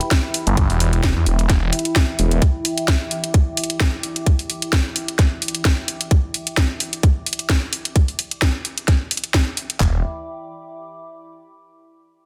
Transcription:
Already playing: E4 E5 G5 B5
0.01 closed hi-hat
0.11 kick, snare, closed hi-hat
0.34 open hi-hat
0.47 G1, closed hi-hat
0.57 kick, closed hi-hat
0.70 E1, open hi-hat
0.80 open hi-hat
0.93 closed hi-hat
1.03 kick, snare, closed hi-hat
1.16 E2
1.26 E1, open hi-hat
1.39 closed hi-hat
1.50 E1, kick, snare, closed hi-hat
1.73 open hi-hat
1.79 closed hi-hat
1.85 closed hi-hat
1.96 kick, snare, closed hi-hat
2.19 E1, open hi-hat
2.31 closed hi-hat
2.42 D6, kick, closed hi-hat
2.65 open hi-hat
2.78 closed hi-hat
2.88 kick, snare, closed hi-hat
3.11 open hi-hat
3.24 closed hi-hat
3.34 kick, closed hi-hat
3.57 open hi-hat
3.64 closed hi-hat
3.70 closed hi-hat
3.80 kick, snare, closed hi-hat
4.03 open hi-hat
4.16 closed hi-hat
4.26 kick, closed hi-hat
4.39 open hi-hat
4.50 open hi-hat
4.62 closed hi-hat
4.73 kick, snare, closed hi-hat
4.96 open hi-hat
5.08 closed hi-hat
5.19 kick, snare, closed hi-hat
5.42 open hi-hat
5.48 closed hi-hat
5.55 closed hi-hat
5.65 kick, snare, closed hi-hat
5.88 open hi-hat
6.01 closed hi-hat
6.11 kick, closed hi-hat
6.34 open hi-hat
6.47 closed hi-hat
6.57 kick, snare, closed hi-hat
6.80 open hi-hat
6.93 closed hi-hat
7.03 kick, closed hi-hat
7.26 open hi-hat
7.33 closed hi-hat
7.39 closed hi-hat
7.49 kick, snare, closed hi-hat
7.73 open hi-hat
7.85 closed hi-hat
7.96 kick, closed hi-hat
8.08 open hi-hat
8.19 open hi-hat
8.31 closed hi-hat
8.42 kick, snare, closed hi-hat
8.65 open hi-hat
8.78 closed hi-hat
8.88 kick, snare, closed hi-hat
9.11 open hi-hat
9.17 closed hi-hat
9.24 closed hi-hat
9.34 kick, snare, closed hi-hat
9.57 open hi-hat
9.70 closed hi-hat
9.80 E1, kick, clap, floor tom

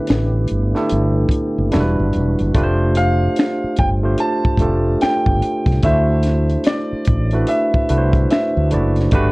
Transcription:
Already playing: D3 A3 B3 D4 E4 G4 B4 E5
0.07 A1, finger snap, snare, closed hi-hat
0.47 G1, closed hi-hat
0.74 A3 D4 E4 G4 A4, snare
0.89 G1, closed hi-hat
1.29 kick, closed hi-hat
1.59 F#1
1.72 E1 E3 G3 D4 E4 F#4 A4, finger snap, snare, closed hi-hat
1.81 B4
2.00 G1
2.13 E1, closed hi-hat
2.39 F#1, closed hi-hat
2.54 F1 A3 D4 F4 G4 B4, kick, closed hi-hat
2.63 C5
2.95 F5, closed hi-hat
3.36 finger snap, snare, closed hi-hat
3.64 muted fretless electric bass stroke
3.77 G1 G5, kick, closed hi-hat
4.03 A3 D4 F4 G4 C5
4.18 A5, closed hi-hat
4.45 kick
4.58 F1 A3 D4 F4, kick, closed hi-hat
4.62 G4 A4
5.01 G5, finger snap, muted fretless electric bass stroke, snare, closed hi-hat
5.26 G1, kick
5.42 closed hi-hat
5.66 C2, kick, closed hi-hat
5.70 snare
5.82 D2 A3 D4 E4 F#4 C5 E5, kick, closed hi-hat
6.23 snare, closed hi-hat
6.49 closed hi-hat
6.64 D5, finger snap, snare, closed hi-hat
6.92 muted fretless electric bass stroke
7.05 A1, kick, closed hi-hat
7.31 A3 D4 E4 F#4, closed hi-hat
7.35 B4
7.47 E5, closed hi-hat
7.74 kick
7.89 C2 A3 D4 E4 F#4 B4, closed hi-hat
7.98 C5
8.13 kick, closed hi-hat
8.31 E5, finger snap, snare, closed hi-hat
8.57 D2
8.71 F#1 A3 D4 E4 F#4 D5, closed hi-hat
8.96 snare, closed hi-hat
9.11 G1 D3 G3 A3 B3 D4 F#4 G4 B4, kick, closed hi-hat

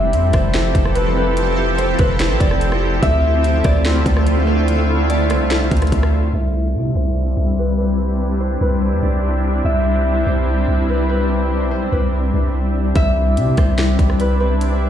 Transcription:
Already playing: F1 F3 C4 E4 G4 A4 B4 E5
0.13 F2, closed hi-hat
0.33 F1 C5, kick, cross-stick, closed hi-hat
0.54 snare, closed hi-hat
0.75 F1, kick, closed hi-hat
0.85 cross-stick
0.95 B4, closed hi-hat
1.16 B4
1.37 closed hi-hat
1.78 C5, closed hi-hat
1.99 F1 B4, kick, closed hi-hat
2.20 C5, snare, closed hi-hat
2.30 A1
2.40 F1 D5, kick, closed hi-hat
2.51 cross-stick
2.61 closed hi-hat
2.72 cross-stick
3.02 D2 D3 A3 E4 F4 E5, kick, closed hi-hat
3.44 closed hi-hat
3.64 D2 D5, kick, cross-stick, closed hi-hat
3.85 snare, closed hi-hat
4.06 D2, kick, closed hi-hat
4.17 cross-stick
4.27 C5, closed hi-hat
4.47 C5
4.68 closed hi-hat
5.10 D5, closed hi-hat
5.30 C2 C5, cross-stick, closed hi-hat
5.51 snare, closed hi-hat
5.71 D2, kick, closed hi-hat
5.77 closed hi-hat
5.82 cross-stick, closed hi-hat
5.87 closed hi-hat
5.92 D2, kick, closed hi-hat
6.03 cross-stick
6.33 C2 G3 C4 D4 E4 E5
6.75 C3
6.95 C2 C5
7.37 C2
7.59 B4
7.78 B4
8.40 C5
8.61 C2 B4
8.82 C5
8.92 E2
9.03 C2 D5
9.65 C2 E5
10.26 C2 C5
10.68 C2
10.89 B4
11.09 B4
11.61 B1
11.71 C5
11.92 C2 B4
12.34 C2
12.95 C2 G3 C4 D4 E4 E5, kick, closed hi-hat
13.37 C3, closed hi-hat
13.57 C2 C5, kick, cross-stick, closed hi-hat
13.78 snare, closed hi-hat
13.99 C2, kick, closed hi-hat
14.10 cross-stick
14.20 B4, closed hi-hat
14.40 B4
14.61 closed hi-hat

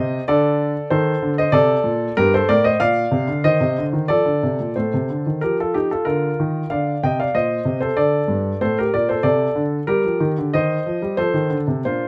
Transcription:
Already playing: C3 C5 D#5
0.28 D3 A4 D5
0.90 D#3 A4 C5
1.22 D3
1.38 C5 D#5
1.52 C3 A4 D5
1.84 A#2
2.17 G2 G4 A#4
2.34 A4 C5
2.49 A2 A#4 D5
2.64 C5 D#5
2.80 A#2 D5 F5
3.11 C3
3.28 D3
3.44 D#3 C5 D#5
3.61 C3
3.78 D3
3.93 D#3
4.08 F3 A4 D5
4.25 D3
4.43 C3
4.60 A#2
4.76 A2 A4 C5
4.94 C3
5.10 D3
5.26 D#3
5.41 F3 G4 A#4
5.60 F4 A4
5.74 D#4 G4
5.91 F4 A4
6.05 D3 F4 A#4
6.40 D#3
6.70 D3 D5 F5
7.03 C3 D#5 G5
7.20 D5 F5
7.35 A#2 C5 D#5
7.65 C3
7.81 A4 C5
7.96 D3 A4 D5
8.28 G2
8.61 A2 A4 C5
8.79 G4 A#4
8.94 A#2 A#4 D5
9.09 A4 C5
9.23 C3 A4 D5
9.55 D3
9.87 G3 G4 A#4
10.04 F3
10.20 D#3
10.38 D3
10.54 D#3 C5 D#5
10.87 F3
11.02 G3
11.17 F3 A4 C5
11.34 D#3
11.50 D3
11.68 C3
11.85 A#2 A#3 D4 F4 C5

